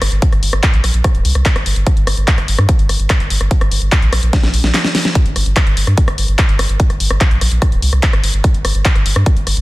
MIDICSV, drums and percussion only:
0, 0, Header, 1, 2, 480
1, 0, Start_track
1, 0, Key_signature, -2, "minor"
1, 0, Tempo, 410959
1, 259, Time_signature, 4, 2, 24, 8
1, 11226, End_track
2, 0, Start_track
2, 0, Title_t, "Drums"
2, 19, Note_on_c, 9, 37, 84
2, 19, Note_on_c, 9, 46, 107
2, 136, Note_off_c, 9, 37, 0
2, 136, Note_off_c, 9, 46, 0
2, 139, Note_on_c, 9, 42, 51
2, 256, Note_off_c, 9, 42, 0
2, 259, Note_on_c, 9, 36, 120
2, 259, Note_on_c, 9, 42, 99
2, 376, Note_off_c, 9, 36, 0
2, 376, Note_off_c, 9, 42, 0
2, 379, Note_on_c, 9, 37, 41
2, 379, Note_on_c, 9, 42, 54
2, 496, Note_off_c, 9, 37, 0
2, 496, Note_off_c, 9, 42, 0
2, 499, Note_on_c, 9, 46, 101
2, 616, Note_off_c, 9, 46, 0
2, 619, Note_on_c, 9, 37, 80
2, 619, Note_on_c, 9, 42, 55
2, 736, Note_off_c, 9, 37, 0
2, 736, Note_off_c, 9, 42, 0
2, 739, Note_on_c, 9, 36, 121
2, 739, Note_on_c, 9, 39, 120
2, 739, Note_on_c, 9, 42, 99
2, 856, Note_off_c, 9, 36, 0
2, 856, Note_off_c, 9, 39, 0
2, 856, Note_off_c, 9, 42, 0
2, 859, Note_on_c, 9, 42, 56
2, 976, Note_off_c, 9, 42, 0
2, 979, Note_on_c, 9, 37, 43
2, 979, Note_on_c, 9, 46, 104
2, 1096, Note_off_c, 9, 37, 0
2, 1096, Note_off_c, 9, 46, 0
2, 1099, Note_on_c, 9, 42, 57
2, 1216, Note_off_c, 9, 42, 0
2, 1219, Note_on_c, 9, 36, 115
2, 1219, Note_on_c, 9, 37, 87
2, 1219, Note_on_c, 9, 42, 95
2, 1336, Note_off_c, 9, 36, 0
2, 1336, Note_off_c, 9, 37, 0
2, 1336, Note_off_c, 9, 42, 0
2, 1339, Note_on_c, 9, 42, 54
2, 1456, Note_off_c, 9, 42, 0
2, 1459, Note_on_c, 9, 46, 102
2, 1576, Note_off_c, 9, 46, 0
2, 1579, Note_on_c, 9, 37, 42
2, 1579, Note_on_c, 9, 42, 53
2, 1696, Note_off_c, 9, 37, 0
2, 1696, Note_off_c, 9, 42, 0
2, 1699, Note_on_c, 9, 36, 123
2, 1699, Note_on_c, 9, 39, 120
2, 1699, Note_on_c, 9, 42, 92
2, 1816, Note_off_c, 9, 36, 0
2, 1816, Note_off_c, 9, 39, 0
2, 1816, Note_off_c, 9, 42, 0
2, 1819, Note_on_c, 9, 37, 87
2, 1819, Note_on_c, 9, 42, 57
2, 1936, Note_off_c, 9, 37, 0
2, 1936, Note_off_c, 9, 42, 0
2, 1939, Note_on_c, 9, 46, 105
2, 2056, Note_off_c, 9, 46, 0
2, 2059, Note_on_c, 9, 42, 52
2, 2176, Note_off_c, 9, 42, 0
2, 2179, Note_on_c, 9, 36, 116
2, 2179, Note_on_c, 9, 37, 43
2, 2179, Note_on_c, 9, 42, 101
2, 2296, Note_off_c, 9, 36, 0
2, 2296, Note_off_c, 9, 37, 0
2, 2296, Note_off_c, 9, 42, 0
2, 2299, Note_on_c, 9, 42, 58
2, 2416, Note_off_c, 9, 42, 0
2, 2419, Note_on_c, 9, 37, 84
2, 2419, Note_on_c, 9, 46, 106
2, 2536, Note_off_c, 9, 37, 0
2, 2536, Note_off_c, 9, 46, 0
2, 2539, Note_on_c, 9, 42, 56
2, 2656, Note_off_c, 9, 42, 0
2, 2659, Note_on_c, 9, 36, 114
2, 2659, Note_on_c, 9, 39, 123
2, 2659, Note_on_c, 9, 42, 102
2, 2776, Note_off_c, 9, 36, 0
2, 2776, Note_off_c, 9, 39, 0
2, 2776, Note_off_c, 9, 42, 0
2, 2779, Note_on_c, 9, 37, 43
2, 2779, Note_on_c, 9, 42, 58
2, 2896, Note_off_c, 9, 37, 0
2, 2896, Note_off_c, 9, 42, 0
2, 2899, Note_on_c, 9, 46, 104
2, 3016, Note_off_c, 9, 46, 0
2, 3019, Note_on_c, 9, 37, 87
2, 3019, Note_on_c, 9, 42, 56
2, 3136, Note_off_c, 9, 37, 0
2, 3136, Note_off_c, 9, 42, 0
2, 3139, Note_on_c, 9, 36, 118
2, 3139, Note_on_c, 9, 42, 101
2, 3256, Note_off_c, 9, 36, 0
2, 3256, Note_off_c, 9, 42, 0
2, 3259, Note_on_c, 9, 42, 55
2, 3376, Note_off_c, 9, 42, 0
2, 3379, Note_on_c, 9, 37, 43
2, 3379, Note_on_c, 9, 46, 103
2, 3496, Note_off_c, 9, 37, 0
2, 3496, Note_off_c, 9, 46, 0
2, 3499, Note_on_c, 9, 42, 52
2, 3616, Note_off_c, 9, 42, 0
2, 3619, Note_on_c, 9, 36, 123
2, 3619, Note_on_c, 9, 37, 85
2, 3619, Note_on_c, 9, 39, 116
2, 3619, Note_on_c, 9, 42, 96
2, 3736, Note_off_c, 9, 36, 0
2, 3736, Note_off_c, 9, 37, 0
2, 3736, Note_off_c, 9, 39, 0
2, 3736, Note_off_c, 9, 42, 0
2, 3739, Note_on_c, 9, 42, 56
2, 3856, Note_off_c, 9, 42, 0
2, 3859, Note_on_c, 9, 46, 109
2, 3976, Note_off_c, 9, 46, 0
2, 3979, Note_on_c, 9, 37, 44
2, 3979, Note_on_c, 9, 42, 53
2, 4096, Note_off_c, 9, 37, 0
2, 4096, Note_off_c, 9, 42, 0
2, 4099, Note_on_c, 9, 36, 123
2, 4099, Note_on_c, 9, 42, 102
2, 4216, Note_off_c, 9, 36, 0
2, 4216, Note_off_c, 9, 42, 0
2, 4219, Note_on_c, 9, 37, 88
2, 4219, Note_on_c, 9, 42, 57
2, 4336, Note_off_c, 9, 37, 0
2, 4336, Note_off_c, 9, 42, 0
2, 4339, Note_on_c, 9, 46, 100
2, 4456, Note_off_c, 9, 46, 0
2, 4459, Note_on_c, 9, 42, 56
2, 4576, Note_off_c, 9, 42, 0
2, 4579, Note_on_c, 9, 36, 122
2, 4579, Note_on_c, 9, 37, 43
2, 4579, Note_on_c, 9, 39, 125
2, 4579, Note_on_c, 9, 42, 97
2, 4696, Note_off_c, 9, 36, 0
2, 4696, Note_off_c, 9, 37, 0
2, 4696, Note_off_c, 9, 39, 0
2, 4696, Note_off_c, 9, 42, 0
2, 4699, Note_on_c, 9, 42, 59
2, 4816, Note_off_c, 9, 42, 0
2, 4819, Note_on_c, 9, 37, 85
2, 4819, Note_on_c, 9, 46, 104
2, 4936, Note_off_c, 9, 37, 0
2, 4936, Note_off_c, 9, 46, 0
2, 4939, Note_on_c, 9, 42, 59
2, 5056, Note_off_c, 9, 42, 0
2, 5059, Note_on_c, 9, 36, 115
2, 5059, Note_on_c, 9, 38, 66
2, 5059, Note_on_c, 9, 42, 102
2, 5176, Note_off_c, 9, 36, 0
2, 5176, Note_off_c, 9, 38, 0
2, 5176, Note_off_c, 9, 42, 0
2, 5179, Note_on_c, 9, 38, 60
2, 5179, Note_on_c, 9, 42, 57
2, 5296, Note_off_c, 9, 38, 0
2, 5296, Note_off_c, 9, 42, 0
2, 5299, Note_on_c, 9, 46, 108
2, 5416, Note_off_c, 9, 46, 0
2, 5419, Note_on_c, 9, 38, 66
2, 5419, Note_on_c, 9, 42, 56
2, 5536, Note_off_c, 9, 38, 0
2, 5536, Note_off_c, 9, 42, 0
2, 5539, Note_on_c, 9, 38, 90
2, 5539, Note_on_c, 9, 39, 118
2, 5539, Note_on_c, 9, 42, 102
2, 5656, Note_off_c, 9, 38, 0
2, 5656, Note_off_c, 9, 39, 0
2, 5656, Note_off_c, 9, 42, 0
2, 5659, Note_on_c, 9, 38, 81
2, 5659, Note_on_c, 9, 42, 59
2, 5776, Note_off_c, 9, 38, 0
2, 5776, Note_off_c, 9, 42, 0
2, 5779, Note_on_c, 9, 38, 107
2, 5779, Note_on_c, 9, 46, 107
2, 5896, Note_off_c, 9, 38, 0
2, 5896, Note_off_c, 9, 46, 0
2, 5899, Note_on_c, 9, 38, 85
2, 5899, Note_on_c, 9, 42, 55
2, 6016, Note_off_c, 9, 38, 0
2, 6016, Note_off_c, 9, 42, 0
2, 6019, Note_on_c, 9, 36, 124
2, 6019, Note_on_c, 9, 42, 97
2, 6136, Note_off_c, 9, 36, 0
2, 6136, Note_off_c, 9, 42, 0
2, 6139, Note_on_c, 9, 42, 56
2, 6256, Note_off_c, 9, 42, 0
2, 6259, Note_on_c, 9, 37, 39
2, 6259, Note_on_c, 9, 46, 102
2, 6376, Note_off_c, 9, 37, 0
2, 6376, Note_off_c, 9, 46, 0
2, 6379, Note_on_c, 9, 42, 54
2, 6496, Note_off_c, 9, 42, 0
2, 6499, Note_on_c, 9, 36, 122
2, 6499, Note_on_c, 9, 37, 82
2, 6499, Note_on_c, 9, 39, 127
2, 6499, Note_on_c, 9, 42, 104
2, 6616, Note_off_c, 9, 36, 0
2, 6616, Note_off_c, 9, 37, 0
2, 6616, Note_off_c, 9, 39, 0
2, 6616, Note_off_c, 9, 42, 0
2, 6619, Note_on_c, 9, 42, 56
2, 6736, Note_off_c, 9, 42, 0
2, 6739, Note_on_c, 9, 46, 110
2, 6856, Note_off_c, 9, 46, 0
2, 6859, Note_on_c, 9, 37, 43
2, 6859, Note_on_c, 9, 42, 58
2, 6976, Note_off_c, 9, 37, 0
2, 6976, Note_off_c, 9, 42, 0
2, 6979, Note_on_c, 9, 36, 122
2, 6979, Note_on_c, 9, 42, 101
2, 7096, Note_off_c, 9, 36, 0
2, 7096, Note_off_c, 9, 42, 0
2, 7099, Note_on_c, 9, 37, 83
2, 7099, Note_on_c, 9, 42, 56
2, 7216, Note_off_c, 9, 37, 0
2, 7216, Note_off_c, 9, 42, 0
2, 7219, Note_on_c, 9, 46, 106
2, 7336, Note_off_c, 9, 46, 0
2, 7339, Note_on_c, 9, 42, 56
2, 7456, Note_off_c, 9, 42, 0
2, 7459, Note_on_c, 9, 36, 126
2, 7459, Note_on_c, 9, 37, 43
2, 7459, Note_on_c, 9, 39, 126
2, 7459, Note_on_c, 9, 42, 103
2, 7576, Note_off_c, 9, 36, 0
2, 7576, Note_off_c, 9, 37, 0
2, 7576, Note_off_c, 9, 39, 0
2, 7576, Note_off_c, 9, 42, 0
2, 7579, Note_on_c, 9, 42, 56
2, 7696, Note_off_c, 9, 42, 0
2, 7699, Note_on_c, 9, 37, 84
2, 7699, Note_on_c, 9, 46, 110
2, 7816, Note_off_c, 9, 37, 0
2, 7816, Note_off_c, 9, 46, 0
2, 7819, Note_on_c, 9, 42, 55
2, 7936, Note_off_c, 9, 42, 0
2, 7939, Note_on_c, 9, 36, 127
2, 7939, Note_on_c, 9, 42, 101
2, 8055, Note_off_c, 9, 42, 0
2, 8056, Note_off_c, 9, 36, 0
2, 8059, Note_on_c, 9, 37, 41
2, 8059, Note_on_c, 9, 42, 58
2, 8176, Note_off_c, 9, 37, 0
2, 8176, Note_off_c, 9, 42, 0
2, 8179, Note_on_c, 9, 46, 114
2, 8296, Note_off_c, 9, 46, 0
2, 8299, Note_on_c, 9, 37, 76
2, 8299, Note_on_c, 9, 42, 53
2, 8416, Note_off_c, 9, 37, 0
2, 8416, Note_off_c, 9, 42, 0
2, 8419, Note_on_c, 9, 36, 127
2, 8419, Note_on_c, 9, 39, 127
2, 8419, Note_on_c, 9, 42, 102
2, 8536, Note_off_c, 9, 36, 0
2, 8536, Note_off_c, 9, 39, 0
2, 8536, Note_off_c, 9, 42, 0
2, 8539, Note_on_c, 9, 42, 55
2, 8656, Note_off_c, 9, 42, 0
2, 8659, Note_on_c, 9, 37, 39
2, 8659, Note_on_c, 9, 46, 113
2, 8776, Note_off_c, 9, 37, 0
2, 8776, Note_off_c, 9, 46, 0
2, 8779, Note_on_c, 9, 42, 57
2, 8896, Note_off_c, 9, 42, 0
2, 8899, Note_on_c, 9, 36, 121
2, 8899, Note_on_c, 9, 37, 76
2, 8899, Note_on_c, 9, 42, 97
2, 9016, Note_off_c, 9, 36, 0
2, 9016, Note_off_c, 9, 37, 0
2, 9016, Note_off_c, 9, 42, 0
2, 9019, Note_on_c, 9, 42, 53
2, 9136, Note_off_c, 9, 42, 0
2, 9139, Note_on_c, 9, 46, 113
2, 9256, Note_off_c, 9, 46, 0
2, 9259, Note_on_c, 9, 37, 41
2, 9259, Note_on_c, 9, 42, 56
2, 9376, Note_off_c, 9, 37, 0
2, 9376, Note_off_c, 9, 42, 0
2, 9379, Note_on_c, 9, 36, 127
2, 9379, Note_on_c, 9, 39, 127
2, 9379, Note_on_c, 9, 42, 99
2, 9496, Note_off_c, 9, 36, 0
2, 9496, Note_off_c, 9, 39, 0
2, 9496, Note_off_c, 9, 42, 0
2, 9499, Note_on_c, 9, 37, 78
2, 9499, Note_on_c, 9, 42, 55
2, 9616, Note_off_c, 9, 37, 0
2, 9616, Note_off_c, 9, 42, 0
2, 9619, Note_on_c, 9, 46, 116
2, 9736, Note_off_c, 9, 46, 0
2, 9739, Note_on_c, 9, 42, 54
2, 9856, Note_off_c, 9, 42, 0
2, 9859, Note_on_c, 9, 36, 127
2, 9859, Note_on_c, 9, 37, 39
2, 9859, Note_on_c, 9, 42, 96
2, 9976, Note_off_c, 9, 36, 0
2, 9976, Note_off_c, 9, 37, 0
2, 9976, Note_off_c, 9, 42, 0
2, 9980, Note_on_c, 9, 42, 54
2, 10096, Note_off_c, 9, 42, 0
2, 10099, Note_on_c, 9, 37, 77
2, 10099, Note_on_c, 9, 46, 116
2, 10216, Note_off_c, 9, 37, 0
2, 10216, Note_off_c, 9, 46, 0
2, 10219, Note_on_c, 9, 42, 50
2, 10336, Note_off_c, 9, 42, 0
2, 10339, Note_on_c, 9, 36, 125
2, 10339, Note_on_c, 9, 39, 124
2, 10339, Note_on_c, 9, 42, 96
2, 10456, Note_off_c, 9, 36, 0
2, 10456, Note_off_c, 9, 39, 0
2, 10456, Note_off_c, 9, 42, 0
2, 10459, Note_on_c, 9, 37, 39
2, 10459, Note_on_c, 9, 42, 54
2, 10576, Note_off_c, 9, 37, 0
2, 10576, Note_off_c, 9, 42, 0
2, 10579, Note_on_c, 9, 46, 119
2, 10696, Note_off_c, 9, 46, 0
2, 10699, Note_on_c, 9, 37, 82
2, 10699, Note_on_c, 9, 42, 56
2, 10816, Note_off_c, 9, 37, 0
2, 10816, Note_off_c, 9, 42, 0
2, 10819, Note_on_c, 9, 36, 127
2, 10819, Note_on_c, 9, 42, 93
2, 10936, Note_off_c, 9, 36, 0
2, 10936, Note_off_c, 9, 42, 0
2, 10939, Note_on_c, 9, 42, 53
2, 11056, Note_off_c, 9, 42, 0
2, 11059, Note_on_c, 9, 37, 39
2, 11059, Note_on_c, 9, 46, 115
2, 11176, Note_off_c, 9, 37, 0
2, 11176, Note_off_c, 9, 46, 0
2, 11179, Note_on_c, 9, 42, 51
2, 11226, Note_off_c, 9, 42, 0
2, 11226, End_track
0, 0, End_of_file